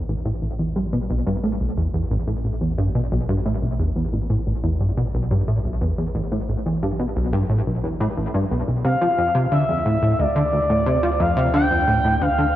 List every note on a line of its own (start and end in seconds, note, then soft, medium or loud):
0.00 8.81 A1 medium
0.08 0.15 A1 loud
0.25 0.32 A2 medium
0.42 0.49 A1 medium
0.59 0.75 E2 medium
0.76 0.87 G2 medium
0.93 0.99 B2 medium
1.10 1.25 B1 loud
1.26 1.38 G2 medium
1.43 1.55 A2 medium
1.60 1.76 B1 medium
1.77 1.88 E2 medium
1.94 2.05 E2 medium
2.11 2.17 A1 medium
2.27 2.34 A2 medium
2.44 2.51 A1 medium
2.61 2.77 E2 medium
2.78 2.89 G2 medium
2.95 3.02 B2 medium
3.12 3.28 B1 loud
3.29 3.40 G2 medium
3.45 3.57 A2 medium
3.62 3.78 B1 medium
3.79 3.90 E2 medium
3.96 4.07 E2 medium
4.13 4.19 A1 medium
4.29 4.36 A2 medium
4.46 4.53 A1 medium
4.63 4.79 E2 medium
4.80 4.91 G2 medium
4.97 5.04 B2 medium
5.13 5.30 B1 medium
5.30 5.42 G2 medium
5.47 5.59 A2 medium
5.64 5.80 B1 medium
5.81 5.93 E2 medium
5.98 6.09 E2 medium
6.15 6.22 A1 loud
6.31 6.38 A2 medium
6.48 6.55 A1 medium
6.65 6.81 E2 medium
6.82 6.94 G2 medium
6.99 7.06 B2 medium
7.16 7.32 B1 loud
7.33 7.44 G2 loud
7.50 7.61 A2 medium
7.67 7.83 B1 medium
7.83 7.99 E2 medium
8.00 8.07 A2 loud
8.17 8.28 A1 medium
8.34 8.45 G2 medium
8.51 8.62 B1 medium
8.68 8.84 B1 medium
8.84 12.56 D2 medium
8.84 8.96 C3 medium
8.84 9.48 F5 loud
9.01 9.08 F3 medium
9.18 9.34 F2 medium
9.35 9.46 C3 loud
9.51 9.63 D3 medium
9.51 10.21 E5 medium
9.69 9.85 F2 medium
9.85 9.97 A2 medium
10.02 10.14 A2 medium
10.19 10.26 D2 medium
10.19 11.22 D5 loud
10.36 10.43 D3 medium
10.53 10.60 D2 medium
10.70 10.86 A2 medium
10.86 10.98 C3 medium
11.03 11.10 F3 medium
11.20 11.36 F2 loud
11.20 11.54 F5 loud
11.37 11.49 C3 medium
11.54 11.65 D3 medium
11.54 12.23 G5 loud
11.71 11.87 F2 medium
11.88 11.99 A2 medium
12.04 12.16 A2 medium
12.21 12.28 D2 loud
12.21 12.56 F5 loud
12.38 12.45 D3 medium